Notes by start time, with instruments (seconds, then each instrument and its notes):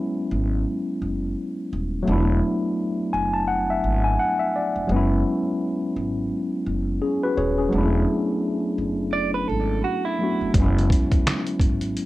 Already playing: tine electric piano F#3 G#3 B3 C#4 E4
0.31 upright bass G#1
1.02 upright bass F#1
1.73 upright bass D#1
2.02 tine electric piano F#3 A3
2.07 upright bass E1, tine electric piano B3 D4
2.12 tine electric piano E4
3.13 upright bass F#1, tine electric piano G#5
3.33 tine electric piano A5
3.48 tine electric piano F#5
3.70 tine electric piano E5
3.84 upright bass G#1
4.04 tine electric piano G#5
4.20 tine electric piano F#5
4.39 tine electric piano E5
4.56 tine electric piano D5
4.76 upright bass F1
4.87 upright bass F#1, tine electric piano F#3 G#3
4.92 tine electric piano B3 C#4
4.96 tine electric piano E4
5.96 upright bass G#1
6.67 upright bass F#1
7.02 tine electric piano C#4 G#4
7.24 tine electric piano F#4 B4
7.37 upright bass D#1, tine electric piano G#4 C#5
7.58 tine electric piano C#4 G#4
7.69 upright bass E1, tine electric piano F#3 G#3
7.73 tine electric piano B3 D4
7.77 tine electric piano A3 E4
8.78 upright bass F#1
9.13 clean electric guitar D5
9.34 clean electric guitar B4
9.48 upright bass G#1, clean electric guitar A4
9.84 clean electric guitar F#4
10.05 clean electric guitar E4
10.19 tine electric piano F#3 A3 B3 D4
10.23 tine electric piano F#4
10.41 upright bass F1
10.54 upright bass F#1, tine electric piano F#3 G#3, kick, closed hi-hat
10.58 tine electric piano B3 C#4
10.62 tine electric piano E4
10.78 closed hi-hat
10.90 kick, closed hi-hat
11.12 kick, closed hi-hat
11.27 finger snap, snare, closed hi-hat
11.47 closed hi-hat
11.60 upright bass G#1, kick, closed hi-hat
11.81 closed hi-hat
11.97 closed hi-hat